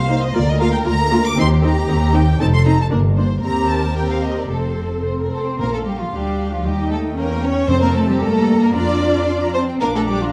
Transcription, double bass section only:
0, 0, Header, 1, 2, 480
1, 0, Start_track
1, 0, Key_signature, -2, "major"
1, 0, Tempo, 513699
1, 320, Time_signature, 2, 2, 24, 8
1, 3199, Tempo, 543478
1, 5119, Tempo, 520382
1, 7519, Tempo, 534283
1, 9427, End_track
2, 0, Start_track
2, 0, Title_t, "Double bass section"
2, 0, Program_c, 0, 48
2, 0, Note_on_c, 0, 36, 72
2, 265, Note_off_c, 0, 36, 0
2, 323, Note_on_c, 0, 38, 71
2, 749, Note_off_c, 0, 38, 0
2, 808, Note_on_c, 0, 38, 80
2, 1232, Note_off_c, 0, 38, 0
2, 1285, Note_on_c, 0, 39, 86
2, 1709, Note_off_c, 0, 39, 0
2, 1767, Note_on_c, 0, 39, 73
2, 2185, Note_off_c, 0, 39, 0
2, 2237, Note_on_c, 0, 29, 71
2, 2658, Note_off_c, 0, 29, 0
2, 2714, Note_on_c, 0, 31, 74
2, 3141, Note_off_c, 0, 31, 0
2, 3199, Note_on_c, 0, 39, 62
2, 4118, Note_off_c, 0, 39, 0
2, 4153, Note_on_c, 0, 29, 48
2, 4940, Note_off_c, 0, 29, 0
2, 5110, Note_on_c, 0, 34, 48
2, 5565, Note_off_c, 0, 34, 0
2, 5601, Note_on_c, 0, 38, 44
2, 6077, Note_on_c, 0, 39, 53
2, 6085, Note_off_c, 0, 38, 0
2, 6553, Note_on_c, 0, 40, 62
2, 6561, Note_off_c, 0, 39, 0
2, 7033, Note_off_c, 0, 40, 0
2, 7045, Note_on_c, 0, 41, 63
2, 7490, Note_off_c, 0, 41, 0
2, 7519, Note_on_c, 0, 43, 72
2, 7997, Note_off_c, 0, 43, 0
2, 8005, Note_on_c, 0, 41, 55
2, 8768, Note_off_c, 0, 41, 0
2, 8973, Note_on_c, 0, 34, 61
2, 9427, Note_off_c, 0, 34, 0
2, 9427, End_track
0, 0, End_of_file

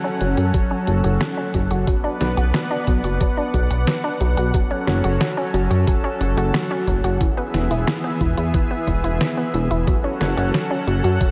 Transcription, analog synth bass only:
0, 0, Header, 1, 2, 480
1, 0, Start_track
1, 0, Key_signature, 3, "minor"
1, 0, Tempo, 666667
1, 1349, Time_signature, 4, 2, 24, 8
1, 8144, End_track
2, 0, Start_track
2, 0, Title_t, "Analog synth bass"
2, 0, Program_c, 0, 38
2, 149, Note_on_c, 0, 30, 85
2, 256, Note_off_c, 0, 30, 0
2, 270, Note_on_c, 0, 42, 78
2, 376, Note_off_c, 0, 42, 0
2, 630, Note_on_c, 0, 30, 95
2, 736, Note_off_c, 0, 30, 0
2, 750, Note_on_c, 0, 30, 86
2, 856, Note_off_c, 0, 30, 0
2, 1108, Note_on_c, 0, 30, 100
2, 1215, Note_off_c, 0, 30, 0
2, 1229, Note_on_c, 0, 30, 79
2, 1335, Note_off_c, 0, 30, 0
2, 1589, Note_on_c, 0, 35, 90
2, 1696, Note_off_c, 0, 35, 0
2, 1710, Note_on_c, 0, 35, 80
2, 1816, Note_off_c, 0, 35, 0
2, 2068, Note_on_c, 0, 35, 89
2, 2175, Note_off_c, 0, 35, 0
2, 2189, Note_on_c, 0, 30, 81
2, 2295, Note_off_c, 0, 30, 0
2, 2549, Note_on_c, 0, 35, 93
2, 2655, Note_off_c, 0, 35, 0
2, 2669, Note_on_c, 0, 35, 86
2, 2775, Note_off_c, 0, 35, 0
2, 3030, Note_on_c, 0, 35, 97
2, 3136, Note_off_c, 0, 35, 0
2, 3149, Note_on_c, 0, 35, 76
2, 3256, Note_off_c, 0, 35, 0
2, 3509, Note_on_c, 0, 30, 91
2, 3615, Note_off_c, 0, 30, 0
2, 3629, Note_on_c, 0, 30, 82
2, 3735, Note_off_c, 0, 30, 0
2, 3989, Note_on_c, 0, 30, 90
2, 4095, Note_off_c, 0, 30, 0
2, 4109, Note_on_c, 0, 42, 82
2, 4215, Note_off_c, 0, 42, 0
2, 4469, Note_on_c, 0, 30, 93
2, 4575, Note_off_c, 0, 30, 0
2, 4588, Note_on_c, 0, 30, 87
2, 4695, Note_off_c, 0, 30, 0
2, 4949, Note_on_c, 0, 30, 99
2, 5055, Note_off_c, 0, 30, 0
2, 5069, Note_on_c, 0, 30, 80
2, 5175, Note_off_c, 0, 30, 0
2, 5429, Note_on_c, 0, 28, 88
2, 5535, Note_off_c, 0, 28, 0
2, 5549, Note_on_c, 0, 28, 81
2, 5655, Note_off_c, 0, 28, 0
2, 5909, Note_on_c, 0, 28, 89
2, 6015, Note_off_c, 0, 28, 0
2, 6029, Note_on_c, 0, 40, 82
2, 6136, Note_off_c, 0, 40, 0
2, 6389, Note_on_c, 0, 28, 89
2, 6495, Note_off_c, 0, 28, 0
2, 6510, Note_on_c, 0, 28, 80
2, 6616, Note_off_c, 0, 28, 0
2, 6869, Note_on_c, 0, 28, 95
2, 6975, Note_off_c, 0, 28, 0
2, 6989, Note_on_c, 0, 28, 80
2, 7095, Note_off_c, 0, 28, 0
2, 7349, Note_on_c, 0, 30, 92
2, 7455, Note_off_c, 0, 30, 0
2, 7469, Note_on_c, 0, 30, 81
2, 7575, Note_off_c, 0, 30, 0
2, 7829, Note_on_c, 0, 30, 86
2, 7935, Note_off_c, 0, 30, 0
2, 7950, Note_on_c, 0, 42, 80
2, 8056, Note_off_c, 0, 42, 0
2, 8144, End_track
0, 0, End_of_file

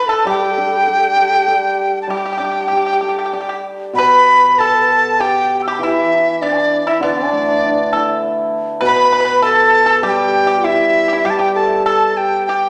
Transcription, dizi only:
0, 0, Header, 1, 2, 480
1, 0, Start_track
1, 0, Tempo, 614125
1, 1161, Time_signature, 4, 2, 24, 8
1, 4058, Tempo, 607287
1, 9986, End_track
2, 0, Start_track
2, 0, Title_t, "Dizi"
2, 0, Program_c, 0, 73
2, 63, Note_on_c, 0, 81, 84
2, 218, Note_off_c, 0, 81, 0
2, 227, Note_on_c, 0, 79, 100
2, 1560, Note_off_c, 0, 79, 0
2, 1579, Note_on_c, 0, 81, 51
2, 1641, Note_on_c, 0, 79, 79
2, 1653, Note_off_c, 0, 81, 0
2, 2854, Note_off_c, 0, 79, 0
2, 3090, Note_on_c, 0, 83, 104
2, 3584, Note_on_c, 0, 81, 88
2, 3596, Note_off_c, 0, 83, 0
2, 4068, Note_on_c, 0, 79, 93
2, 4080, Note_off_c, 0, 81, 0
2, 4374, Note_off_c, 0, 79, 0
2, 4378, Note_on_c, 0, 79, 35
2, 4401, Note_off_c, 0, 79, 0
2, 4406, Note_on_c, 0, 88, 36
2, 4440, Note_off_c, 0, 88, 0
2, 4445, Note_on_c, 0, 86, 44
2, 4461, Note_off_c, 0, 86, 0
2, 4463, Note_on_c, 0, 83, 46
2, 4488, Note_off_c, 0, 83, 0
2, 4493, Note_on_c, 0, 81, 51
2, 4509, Note_off_c, 0, 81, 0
2, 4514, Note_on_c, 0, 79, 51
2, 4540, Note_on_c, 0, 76, 87
2, 4552, Note_off_c, 0, 79, 0
2, 5027, Note_on_c, 0, 74, 81
2, 5039, Note_off_c, 0, 76, 0
2, 5403, Note_on_c, 0, 76, 76
2, 5415, Note_off_c, 0, 74, 0
2, 5503, Note_off_c, 0, 76, 0
2, 5508, Note_on_c, 0, 74, 76
2, 6422, Note_off_c, 0, 74, 0
2, 6953, Note_on_c, 0, 83, 112
2, 7385, Note_off_c, 0, 83, 0
2, 7420, Note_on_c, 0, 81, 105
2, 7861, Note_off_c, 0, 81, 0
2, 7915, Note_on_c, 0, 79, 103
2, 8366, Note_on_c, 0, 76, 93
2, 8378, Note_off_c, 0, 79, 0
2, 8857, Note_on_c, 0, 79, 82
2, 8868, Note_off_c, 0, 76, 0
2, 8887, Note_on_c, 0, 81, 76
2, 8899, Note_off_c, 0, 79, 0
2, 8959, Note_on_c, 0, 79, 89
2, 8970, Note_off_c, 0, 81, 0
2, 9080, Note_off_c, 0, 79, 0
2, 9084, Note_on_c, 0, 81, 83
2, 9308, Note_off_c, 0, 81, 0
2, 9325, Note_on_c, 0, 81, 83
2, 9574, Note_on_c, 0, 79, 82
2, 9586, Note_off_c, 0, 81, 0
2, 9801, Note_off_c, 0, 79, 0
2, 9806, Note_on_c, 0, 79, 77
2, 9986, Note_off_c, 0, 79, 0
2, 9986, End_track
0, 0, End_of_file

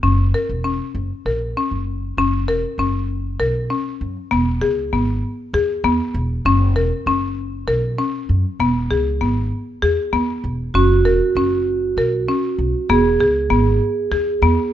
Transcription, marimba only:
0, 0, Header, 1, 2, 480
1, 0, Start_track
1, 0, Tempo, 612245
1, 27, Time_signature, 7, 3, 24, 8
1, 11548, End_track
2, 0, Start_track
2, 0, Title_t, "Marimba"
2, 0, Program_c, 0, 12
2, 24, Note_on_c, 0, 61, 73
2, 147, Note_off_c, 0, 61, 0
2, 269, Note_on_c, 0, 70, 62
2, 390, Note_off_c, 0, 70, 0
2, 504, Note_on_c, 0, 61, 62
2, 748, Note_off_c, 0, 61, 0
2, 988, Note_on_c, 0, 70, 61
2, 1109, Note_off_c, 0, 70, 0
2, 1232, Note_on_c, 0, 61, 64
2, 1474, Note_off_c, 0, 61, 0
2, 1712, Note_on_c, 0, 61, 82
2, 1833, Note_off_c, 0, 61, 0
2, 1946, Note_on_c, 0, 70, 66
2, 2068, Note_off_c, 0, 70, 0
2, 2189, Note_on_c, 0, 61, 68
2, 2431, Note_off_c, 0, 61, 0
2, 2663, Note_on_c, 0, 70, 63
2, 2785, Note_off_c, 0, 70, 0
2, 2903, Note_on_c, 0, 61, 67
2, 3147, Note_off_c, 0, 61, 0
2, 3380, Note_on_c, 0, 59, 79
2, 3503, Note_off_c, 0, 59, 0
2, 3618, Note_on_c, 0, 68, 71
2, 3742, Note_off_c, 0, 68, 0
2, 3863, Note_on_c, 0, 59, 67
2, 4107, Note_off_c, 0, 59, 0
2, 4344, Note_on_c, 0, 68, 75
2, 4466, Note_off_c, 0, 68, 0
2, 4581, Note_on_c, 0, 59, 79
2, 4825, Note_off_c, 0, 59, 0
2, 5064, Note_on_c, 0, 61, 92
2, 5186, Note_off_c, 0, 61, 0
2, 5299, Note_on_c, 0, 70, 64
2, 5422, Note_off_c, 0, 70, 0
2, 5542, Note_on_c, 0, 61, 75
2, 5786, Note_off_c, 0, 61, 0
2, 6018, Note_on_c, 0, 70, 70
2, 6141, Note_off_c, 0, 70, 0
2, 6260, Note_on_c, 0, 61, 69
2, 6504, Note_off_c, 0, 61, 0
2, 6744, Note_on_c, 0, 59, 76
2, 6866, Note_off_c, 0, 59, 0
2, 6982, Note_on_c, 0, 68, 66
2, 7104, Note_off_c, 0, 68, 0
2, 7222, Note_on_c, 0, 59, 65
2, 7465, Note_off_c, 0, 59, 0
2, 7702, Note_on_c, 0, 68, 70
2, 7824, Note_off_c, 0, 68, 0
2, 7941, Note_on_c, 0, 59, 71
2, 8185, Note_off_c, 0, 59, 0
2, 8429, Note_on_c, 0, 61, 78
2, 8549, Note_off_c, 0, 61, 0
2, 8665, Note_on_c, 0, 70, 67
2, 8787, Note_off_c, 0, 70, 0
2, 8910, Note_on_c, 0, 61, 73
2, 9152, Note_off_c, 0, 61, 0
2, 9391, Note_on_c, 0, 70, 66
2, 9511, Note_off_c, 0, 70, 0
2, 9632, Note_on_c, 0, 61, 75
2, 9873, Note_off_c, 0, 61, 0
2, 10112, Note_on_c, 0, 59, 87
2, 10232, Note_off_c, 0, 59, 0
2, 10353, Note_on_c, 0, 68, 66
2, 10473, Note_off_c, 0, 68, 0
2, 10586, Note_on_c, 0, 59, 73
2, 10829, Note_off_c, 0, 59, 0
2, 11067, Note_on_c, 0, 68, 70
2, 11188, Note_off_c, 0, 68, 0
2, 11310, Note_on_c, 0, 59, 74
2, 11548, Note_off_c, 0, 59, 0
2, 11548, End_track
0, 0, End_of_file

